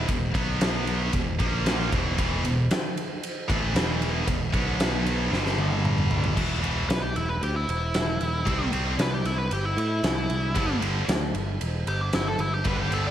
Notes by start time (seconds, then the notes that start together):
0.08 E1 E2 B2, kick, ride
0.34 B1 B2 F#3 B3, kick, ride
0.61 snare, ride
0.87 ride
1.12 E1 E2 B2, kick, ride
1.39 A#1 A#2 F3 A#3, kick, ride
1.66 snare, ride
1.91 E1 E2 B2 E3, kick, ride
2.17 E1 E2 B2 E3, kick, ride
2.44 E1 E2 B2, ride
2.71 snare, ride
2.97 ride
3.23 ride
3.48 A1 A2 E3 A3, kick, ride
3.74 E1 E2 B2 E3, snare, ride
4.02 ride
4.27 E1 E2 B2, kick, ride
4.53 B1 B2 F#3 B3, kick, ride
4.80 snare, ride
5.06 ride
5.31 G1 G2 D3 G3, snare
5.46 snare
5.58 high tom
5.72 high tom
5.85 mid tom
5.98 mid tom
6.11 floor tom
6.24 floor tom
6.36 E1 E2 B2 E3, kick, crash
6.62 E2 B2 E3, ride
6.89 B1 B4, snare, ride
7.02 G4
7.16 E1 E4, ride
7.29 B4
7.41 D2 G4, ride
7.56 E4
7.68 E1 E4, ride
7.94 E1, snare, ride
8.21 E1, ride
8.46 C2 C3 G3 C4, kick, ride
8.72 C2 C3 G3 C4, ride
8.98 C2 B4, snare, ride
9.14 G4
9.25 C2 E4, snare, ride
9.38 B4
9.51 G1 G4, ride
9.65 E4
9.77 A2 E4, ride
10.03 C2, snare, ride
10.30 C2, ride
10.55 G1 G2 D3 G3, kick, ride
10.80 G2 D3 G3, ride
11.08 D2, snare, ride
11.34 G1, ride
11.61 E1, ride
11.87 G1 G4, ride
12.01 D4
12.13 G1 E4, snare, ride
12.28 A4
12.39 G1 E4, ride
12.53 G4
12.65 G1 G2 D3 G3 B4, kick, ride
12.82 G4
12.91 G1 G2 D3 G3 A4, ride
13.07 D5